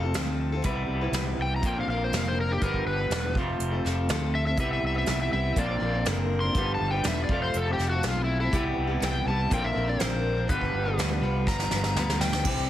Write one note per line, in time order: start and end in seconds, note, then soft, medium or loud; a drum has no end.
0.00 0.13 F1 medium
0.00 0.62 F2 medium
0.00 0.62 C3 medium
0.00 0.63 F3 medium
0.00 0.63 A3 medium
0.00 0.63 C4 medium
0.00 0.64 F4 medium
0.00 0.15 A4 medium
0.05 0.14 C4 soft
0.05 0.14 F4 soft
0.14 0.61 D2 medium
0.14 0.52 F3 medium
0.14 0.52 C4 medium
0.14 0.53 F4 medium
0.14 0.51 A4 medium
0.14 snare loud
0.14 closed hi-hat medium
0.52 0.66 C4 soft
0.52 0.64 F4 medium
0.52 0.65 A4 medium
0.62 1.01 C3 medium
0.62 1.62 E3 medium
0.62 1.01 G3 medium
0.62 1.63 B3 medium
0.62 1.01 E4 medium
0.62 1.00 B4 loud
0.62 kick loud
0.62 closed hi-hat medium
0.88 1.11 C2 medium
1.01 1.13 C4 medium
1.01 1.14 E4 medium
1.01 1.14 B4 medium
1.11 1.35 C2 medium
1.11 1.26 C3 medium
1.11 1.26 G3 loud
1.11 1.27 C4 medium
1.11 1.26 E4 medium
1.11 1.25 B4 medium
1.11 snare loud
1.11 closed hi-hat medium
1.26 1.38 C4 soft
1.26 1.39 E4 soft
1.26 1.38 B4 soft
1.37 1.62 C2 medium
1.37 1.63 G3 medium
1.37 1.63 C4 medium
1.37 1.64 E4 medium
1.37 1.64 B4 medium
1.42 1.52 G5 medium
1.56 1.66 A#5 medium
1.62 1.85 A#1 medium
1.62 1.75 A#2 medium
1.62 1.76 D3 medium
1.62 1.76 F3 medium
1.62 2.60 A#3 medium
1.62 1.76 C4 medium
1.62 1.75 D4 medium
1.62 2.61 F4 medium
1.62 1.74 A#4 medium
1.62 1.77 G5 medium
1.62 kick loud
1.62 closed hi-hat medium
1.75 1.87 F3 soft
1.75 1.89 C4 soft
1.75 1.88 D4 soft
1.75 1.88 A#4 medium
1.81 1.89 F5 medium
1.87 2.10 A#1 medium
1.87 2.12 F3 medium
1.87 2.12 C4 medium
1.87 2.13 D4 medium
1.87 2.01 F5 medium
1.92 2.13 A#4 medium
2.04 2.14 C5 medium
2.12 2.57 F1 medium
2.12 2.49 A#2 medium
2.12 2.50 D3 medium
2.12 2.50 F3 medium
2.12 2.50 C4 medium
2.12 2.49 D4 medium
2.12 2.48 A#4 medium
2.12 snare loud
2.12 closed hi-hat medium
2.17 2.27 F5 medium
2.28 2.38 C5 medium
2.41 2.51 A#4 medium
2.50 2.61 F3 soft
2.50 2.63 C4 soft
2.50 2.62 D4 soft
2.50 2.63 G4 medium
2.50 2.62 A#4 soft
2.61 2.84 G1 medium
2.61 2.99 G2 medium
2.61 2.99 D3 medium
2.61 2.99 F3 medium
2.61 3.35 G3 medium
2.61 2.99 B3 medium
2.61 2.98 D4 medium
2.61 3.35 G4 medium
2.61 2.86 A#4 medium
2.61 2.96 B4 medium
2.61 kick loud
2.61 closed hi-hat medium
2.74 kick medium
2.85 3.08 G1 medium
2.85 3.35 B4 medium
2.97 3.10 F3 soft
2.97 3.11 B3 soft
2.97 3.11 D4 medium
2.97 3.10 B4 medium
3.10 3.35 E1 medium
3.10 3.23 G2 medium
3.10 3.23 D3 medium
3.10 3.24 F3 medium
3.10 3.24 B3 medium
3.10 3.23 D4 medium
3.10 3.22 B4 medium
3.10 snare loud
3.10 closed hi-hat medium
3.23 3.34 F3 soft
3.23 3.36 B3 soft
3.23 3.36 D4 soft
3.23 3.36 B4 soft
3.35 3.58 F1 medium
3.35 4.57 F2 medium
3.35 4.56 C3 medium
3.35 3.72 F3 medium
3.35 4.58 A3 medium
3.35 3.73 C4 medium
3.35 3.72 F4 medium
3.35 kick medium
3.39 3.70 A4 medium
3.59 3.82 F1 medium
3.59 closed hi-hat medium
3.71 3.84 C4 soft
3.71 3.85 F4 soft
3.71 3.84 A4 medium
3.85 4.07 F1 medium
3.85 4.08 F3 medium
3.85 4.09 C4 medium
3.85 4.10 F4 medium
3.85 4.10 A4 medium
3.85 snare soft
4.09 4.54 D2 medium
4.09 4.46 F3 medium
4.09 4.47 C4 medium
4.09 4.47 F4 medium
4.09 4.45 A4 medium
4.09 snare loud
4.09 closed hi-hat medium
4.35 4.46 E5 loud
4.46 4.60 C4 soft
4.46 4.58 F4 soft
4.46 4.59 A4 medium
4.46 4.59 E5 medium
4.57 4.95 C3 medium
4.57 5.56 E3 medium
4.57 4.95 G3 medium
4.57 5.56 B3 medium
4.57 5.57 B3 medium
4.57 4.95 E4 medium
4.57 4.93 B4 medium
4.57 5.56 E5 medium
4.57 4.71 E5 medium
4.57 6.53 G5 medium
4.57 kick loud
4.57 closed hi-hat medium
4.73 4.84 E5 medium
4.82 5.05 C2 medium
4.87 4.97 E5 medium
4.94 5.07 C4 soft
4.94 5.08 E4 soft
4.94 5.07 B4 medium
4.94 5.09 E5 medium
5.06 5.30 C2 medium
5.06 5.32 C3 medium
5.06 5.30 G3 medium
5.06 5.32 C4 medium
5.06 5.32 E4 medium
5.06 5.33 B4 medium
5.06 snare loud
5.06 closed hi-hat medium
5.11 5.20 E5 medium
5.21 5.32 E5 medium
5.31 5.55 C2 medium
5.31 5.57 G3 medium
5.31 5.57 C4 medium
5.31 5.58 E4 medium
5.31 5.59 B4 medium
5.31 5.57 E5 medium
5.55 5.79 A#1 medium
5.55 5.69 A#2 medium
5.55 5.69 D3 medium
5.55 5.69 F3 medium
5.55 6.54 A#3 medium
5.55 5.68 C4 medium
5.55 5.67 D4 medium
5.55 6.53 A#4 medium
5.55 6.53 D5 medium
5.55 kick loud
5.55 closed hi-hat medium
5.59 6.55 F4 medium
5.59 5.66 A#4 medium
5.59 6.06 D5 loud
5.67 5.79 F3 soft
5.67 5.80 C4 soft
5.67 5.81 D4 soft
5.67 5.81 A#4 medium
5.80 6.04 A#1 medium
5.80 5.93 F3 medium
5.80 5.94 C4 medium
5.80 5.93 D4 medium
5.80 5.91 A#4 medium
5.93 6.05 F3 soft
5.93 6.06 C4 soft
5.93 6.06 D4 soft
5.93 6.06 A#4 medium
6.05 6.51 F#1 medium
6.05 6.43 A#2 medium
6.05 6.43 D3 medium
6.05 6.43 F3 medium
6.05 6.43 C4 medium
6.05 6.42 D4 medium
6.05 6.40 A#4 medium
6.05 snare loud
6.05 closed hi-hat medium
6.41 6.56 C4 soft
6.41 6.55 D4 medium
6.41 6.55 A#4 medium
6.41 6.72 C6 medium
6.45 6.55 F3 soft
6.54 6.78 G1 medium
6.54 6.93 G2 medium
6.54 6.93 D3 medium
6.54 6.93 F3 medium
6.54 7.28 G3 medium
6.54 6.93 B3 medium
6.54 6.92 D4 medium
6.54 7.28 G4 medium
6.54 7.29 G4 medium
6.54 6.90 B4 medium
6.54 8.50 F5 medium
6.54 7.28 B5 medium
6.54 kick loud
6.54 closed hi-hat medium
6.75 6.89 A5 medium
6.80 7.03 G1 medium
6.91 7.04 B3 soft
6.91 7.05 D4 medium
6.91 7.04 B4 medium
6.91 7.06 G5 medium
6.95 7.03 F3 soft
7.03 7.27 E1 medium
7.03 7.29 G2 medium
7.03 7.29 D3 medium
7.03 7.27 F3 medium
7.03 7.29 B3 medium
7.03 7.30 D4 medium
7.03 7.30 B4 medium
7.03 snare loud
7.03 closed hi-hat medium
7.08 7.22 E5 medium
7.24 8.50 F2 medium
7.24 7.39 D5 medium
7.29 7.52 F1 medium
7.29 8.51 C3 medium
7.29 7.66 F3 medium
7.29 8.51 A3 medium
7.29 7.66 C4 medium
7.29 7.66 F4 medium
7.29 8.52 A4 medium
7.29 7.64 A4 medium
7.29 10.47 A5 medium
7.29 kick loud
7.42 7.56 C5 medium
7.54 7.77 F1 medium
7.54 7.71 A4 medium
7.54 closed hi-hat medium
7.65 7.77 C4 soft
7.65 7.78 F4 soft
7.65 7.78 A4 medium
7.73 7.88 G4 medium
7.78 8.01 F1 medium
7.78 7.91 F3 medium
7.78 7.91 C4 medium
7.78 7.91 F4 medium
7.78 7.90 A4 medium
7.78 snare soft
7.90 8.04 F4 soft
7.90 8.04 F#4 medium
7.90 8.03 A4 soft
7.94 8.04 C4 soft
8.03 8.49 B1 medium
8.03 8.40 F3 medium
8.03 8.41 C4 medium
8.03 8.40 F4 medium
8.03 8.39 A4 medium
8.03 snare loud
8.03 closed hi-hat medium
8.08 8.22 F4 medium
8.24 8.38 E4 medium
8.40 8.53 C4 soft
8.40 8.62 E4 loud
8.40 8.53 F4 soft
8.40 8.52 A4 medium
8.51 8.75 C2 medium
8.51 8.89 C3 medium
8.51 9.50 E3 medium
8.51 8.90 G3 medium
8.51 8.90 B3 medium
8.51 8.88 E4 medium
8.51 8.86 G4 medium
8.51 9.51 E5 medium
8.51 kick loud
8.51 closed hi-hat medium
8.57 9.52 B4 medium
8.77 9.00 C2 medium
8.87 9.02 E4 medium
8.87 9.01 G4 medium
8.91 9.01 B3 soft
9.00 9.24 C2 medium
9.00 9.13 C3 medium
9.00 9.14 G3 medium
9.00 9.14 B3 medium
9.00 9.13 E4 medium
9.00 9.11 G4 medium
9.00 snare loud
9.00 closed hi-hat medium
9.06 9.28 G5 loud
9.12 9.27 B3 soft
9.12 9.27 E4 soft
9.12 9.25 G4 soft
9.25 9.48 C2 medium
9.25 9.51 G3 medium
9.25 9.51 B3 medium
9.25 9.52 E4 medium
9.25 9.51 A5 medium
9.30 9.52 G4 medium
9.49 9.73 A#1 medium
9.49 9.63 A#2 medium
9.49 9.63 D3 medium
9.49 9.63 F3 medium
9.49 10.49 A#3 medium
9.49 9.63 C4 medium
9.49 9.62 D4 medium
9.49 10.47 A#4 medium
9.49 9.61 A#4 medium
9.49 10.48 D5 medium
9.49 kick loud
9.49 closed hi-hat medium
9.54 10.49 F4 medium
9.54 9.65 G5 loud
9.62 9.74 C4 soft
9.62 9.75 D4 medium
9.62 9.75 A#4 medium
9.62 9.88 E5 medium
9.66 9.72 F3 soft
9.73 9.98 A#1 medium
9.73 9.87 F3 medium
9.73 9.87 C4 medium
9.73 9.86 D4 medium
9.77 9.85 A#4 medium
9.86 9.99 F3 soft
9.86 10.00 C4 soft
9.86 10.00 D4 soft
9.86 9.99 A#4 soft
9.86 10.01 D5 loud
9.99 10.45 A#1 medium
9.99 10.37 A#2 medium
9.99 10.37 D3 medium
9.99 10.37 F3 medium
9.99 10.37 C4 medium
9.99 10.35 D4 medium
9.99 10.33 A#4 medium
9.99 10.48 C5 medium
9.99 snare loud
9.99 closed hi-hat medium
10.34 10.48 F3 soft
10.34 10.49 C4 soft
10.34 10.48 D4 soft
10.34 10.48 A#4 medium
10.48 10.72 G1 loud
10.48 10.85 G2 medium
10.48 10.86 D3 medium
10.48 10.86 F3 medium
10.48 12.45 G3 medium
10.48 10.86 B3 medium
10.48 10.85 D4 medium
10.48 12.44 G4 medium
10.48 10.84 B4 medium
10.48 10.97 B4 loud
10.48 12.44 F5 medium
10.48 kick loud
10.48 closed hi-hat medium
10.52 12.46 G4 medium
10.61 kick medium
10.73 10.96 G1 medium
10.85 10.98 F3 soft
10.85 10.99 B3 medium
10.85 10.98 D4 medium
10.85 10.98 B4 medium
10.97 11.20 D2 medium
10.97 11.10 G2 medium
10.97 11.11 D3 medium
10.97 11.11 F3 medium
10.97 11.11 B3 medium
10.97 11.10 D4 medium
10.97 11.08 B4 medium
10.97 snare loud
10.97 closed hi-hat medium
11.09 11.20 F3 soft
11.09 11.22 B3 soft
11.09 11.22 D4 soft
11.09 11.22 B4 medium
11.21 11.45 C2 medium
11.21 11.59 F3 medium
11.21 11.60 B3 medium
11.21 11.59 D4 medium
11.21 11.58 B4 medium
11.47 11.70 G1 medium
11.47 12.20 A#5 loud
11.47 kick loud
11.47 snare medium
11.59 11.71 F3 soft
11.59 11.72 B3 soft
11.59 11.72 D4 soft
11.59 11.72 B4 medium
11.59 snare medium
11.71 11.94 G1 medium
11.71 11.84 F3 medium
11.71 11.84 B3 medium
11.71 11.83 D4 medium
11.71 snare medium
11.75 11.81 B4 medium
11.82 11.96 B3 soft
11.82 11.97 D4 soft
11.82 11.96 B4 soft
11.82 snare medium
11.87 11.96 F3 soft
11.95 12.41 D2 medium
11.95 12.34 G2 medium
11.95 12.33 D3 medium
11.95 12.34 F3 medium
11.95 12.34 B3 medium
11.95 12.33 D4 medium
11.95 12.32 B4 medium
11.95 snare medium
12.10 snare medium
12.21 12.45 G5 loud
12.21 snare loud
12.33 12.47 B3 soft
12.33 12.46 D4 medium
12.33 12.46 B4 medium
12.33 snare medium
12.37 12.46 F3 soft
12.45 12.69 C2 medium
12.45 12.70 C3 medium
12.45 12.70 E3 medium
12.45 12.69 G3 medium
12.45 12.69 C4 medium
12.45 12.70 D4 medium
12.45 12.70 G4 medium
12.45 12.70 C5 medium
12.45 12.70 E5 medium
12.45 12.70 D6 medium
12.45 kick loud
12.45 crash loud